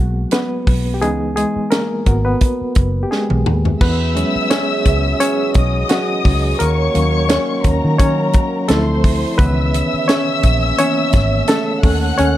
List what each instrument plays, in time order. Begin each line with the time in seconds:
Already playing: fingered electric bass B1, reed electric piano F#3 A#3 B3 F#4 G#4
0.31 reed electric piano B3 B4, snare, closed hi-hat
0.67 fingered electric bass B1, kick, open hi-hat
0.94 reed electric piano G4
1.01 fingered electric bass C#2, reed electric piano E3 G#3 B3 D#4 G#4, closed hi-hat
1.36 reed electric piano G#3 G#4, closed hi-hat
1.56 muted fingered electric bass stroke
1.71 reed electric piano A#3 A#4, snare, closed hi-hat
2.06 fingered electric bass G#1, reed electric piano B3 F#4 A#4, kick, closed hi-hat
2.25 reed electric piano B3 B4
2.41 kick, closed hi-hat
2.61 muted fingered electric bass stroke
2.75 fingered electric bass F#1, kick, closed hi-hat
3.03 reed electric piano G4
3.11 reed electric piano G#3 G#4, snare
3.30 fingered electric bass B1, high tom
3.46 fingered electric bass D#2, mid tom
3.65 floor tom
3.81 fingered electric bass E2, french horn section E3 C#4 F#4 G#4, reed electric piano B3 B4, string section E5 E6, kick, crash
4.15 reed electric piano F#3 G#3 C#4, closed hi-hat
4.35 muted fingered electric bass stroke
4.50 reed electric piano C#4 C#5, vibraphone G#4, snare, closed hi-hat
4.85 fingered electric bass C#2, kick, closed hi-hat
5.20 reed electric piano C#4 C#5, closed hi-hat
5.54 fingered electric bass B1, string section D#5 D#6, kick, closed hi-hat
5.89 reed electric piano F#3 F#4, snare, closed hi-hat
6.25 fingered electric bass C#2, kick, open hi-hat
6.59 fingered electric bass D#2, french horn section D#3 A#3 C#4, reed electric piano A#3 A#4, string section C#5 C#6, closed hi-hat
6.94 fingered electric bass D#2, reed electric piano F#3 A#3 C#4, closed hi-hat
7.29 reed electric piano C#4 C#5, snare, closed hi-hat
7.63 fingered electric bass D#2, string section A#4 A#5, kick, closed hi-hat
7.84 fingered electric bass D#3
7.98 vibraphone F#3, reed electric piano C#4 C#5, kick, closed hi-hat
8.33 kick, closed hi-hat
8.68 fingered electric bass D2, french horn section D3 C4 E4, reed electric piano F3 A3 C4 E4 A4, string section C5 C6, snare, closed hi-hat
9.04 kick, open hi-hat
9.38 fingered electric bass C#2, french horn section C#3 C#4, reed electric piano D#3 E3 B3 B4, string section E5 E6, kick, closed hi-hat
9.74 closed hi-hat
9.93 muted fingered electric bass stroke
10.08 reed electric piano C#4 C#5, snare, closed hi-hat
10.43 fingered electric bass A#1, vibraphone A#3, kick, closed hi-hat
10.67 vibraphone C#5
10.78 reed electric piano E3 B3 C#4 C#5, closed hi-hat
11.13 fingered electric bass G#1, kick, snare, closed hi-hat
11.47 reed electric piano A3 A4, snare, closed hi-hat
11.83 fingered electric bass D#2, reed electric piano D#3 A3 C#4, french horn section D#3 C#4 A4, string section F#5 F#6, kick, open hi-hat
12.18 fingered electric bass D#2, reed electric piano C#4 C#5, closed hi-hat